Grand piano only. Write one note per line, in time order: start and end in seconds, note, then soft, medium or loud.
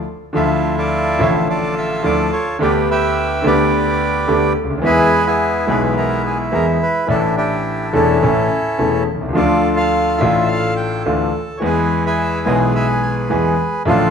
0.33 1.15 D2 medium
0.33 1.15 D3 medium
0.33 1.15 F3 medium
0.33 1.15 A3 medium
0.33 1.16 E5 medium
1.18 2.00 A1 medium
1.18 2.00 A2 medium
1.18 1.99 D3 medium
1.18 1.99 F3 medium
1.18 2.00 A3 medium
1.18 2.01 E5 medium
2.03 2.27 D2 medium
2.03 2.27 D3 medium
2.03 2.27 F3 medium
2.03 2.27 A3 medium
2.03 2.27 E4 medium
2.59 3.40 D2 medium
2.59 3.40 D3 medium
2.59 3.40 A3 medium
2.59 3.41 B3 medium
2.59 3.41 G4 medium
3.42 4.24 D2 medium
3.42 3.44 D3 medium
3.42 4.24 D3 medium
3.42 4.23 A3 medium
3.42 4.24 B3 medium
3.46 4.25 G4 medium
4.28 4.52 D2 medium
4.28 4.52 D3 medium
4.28 4.51 A3 medium
4.28 4.51 B3 medium
4.28 4.52 G4 medium
4.63 4.70 C#2 soft
4.70 4.77 D2 medium
4.78 4.84 D#2 medium
4.82 5.63 E2 medium
4.82 5.63 E3 medium
4.82 5.63 G#3 medium
4.82 5.64 B3 medium
4.86 5.65 G#4 medium
5.67 6.48 B1 medium
5.67 6.48 B2 medium
5.67 6.47 E3 medium
5.67 6.48 G#3 medium
5.67 6.49 B3 medium
5.71 6.49 G#4 medium
6.52 6.76 E2 medium
6.52 6.76 E3 medium
6.52 6.76 G#3 medium
6.52 6.76 B3 medium
6.52 6.76 G#4 medium
7.07 7.89 A1 medium
7.07 7.89 A2 medium
7.07 7.88 E3 medium
7.07 7.89 A3 medium
7.07 7.89 D4 medium
7.07 7.90 A4 medium
7.93 8.17 E1 medium
7.93 8.17 E2 medium
7.93 8.17 E3 medium
7.93 8.17 A3 medium
7.93 8.17 D4 medium
7.93 8.17 A4 medium
8.22 8.46 A1 medium
8.22 8.46 A2 medium
8.22 8.46 E3 medium
8.22 8.46 A3 medium
8.22 8.46 C#4 medium
8.22 8.46 A4 medium
8.79 9.02 E1 medium
8.79 9.03 E2 medium
8.79 9.02 E3 medium
8.79 9.03 A3 medium
8.79 9.02 C#4 medium
8.79 9.03 A4 medium
9.14 9.21 B1 soft
9.21 9.28 C2 medium
9.29 9.35 C#2 medium
9.33 10.16 D2 medium
9.33 10.16 D3 medium
9.33 10.15 F3 medium
9.33 10.15 A3 medium
9.33 10.16 D4 medium
9.33 10.17 F4 medium
10.18 11.01 A1 medium
10.18 11.01 A2 medium
10.18 11.01 A3 medium
10.18 11.01 D4 medium
10.18 11.00 E4 medium
10.22 11.02 F4 medium
11.06 11.29 D2 medium
11.06 11.29 D3 medium
11.06 11.29 E3 medium
11.06 11.29 A3 medium
11.06 11.29 D4 medium
11.06 11.29 F4 medium
11.60 12.42 E2 medium
11.60 11.61 E3 medium
11.60 12.42 E3 medium
11.60 12.42 G#3 medium
11.60 12.43 B3 medium
11.60 12.43 G#4 medium
12.45 13.26 B1 medium
12.45 13.26 B2 medium
12.45 13.26 E3 medium
12.45 13.26 G#3 medium
12.45 13.27 B3 medium
12.45 13.27 G#4 medium
13.30 13.54 E2 medium
13.30 13.54 E3 medium
13.30 13.54 G#3 medium
13.30 13.54 B3 medium
13.30 13.54 G#4 medium
13.85 14.10 A1 medium
13.85 14.10 A2 medium
13.85 14.10 D3 medium
13.85 14.10 F3 medium
13.85 14.10 A3 medium
13.85 14.10 F4 medium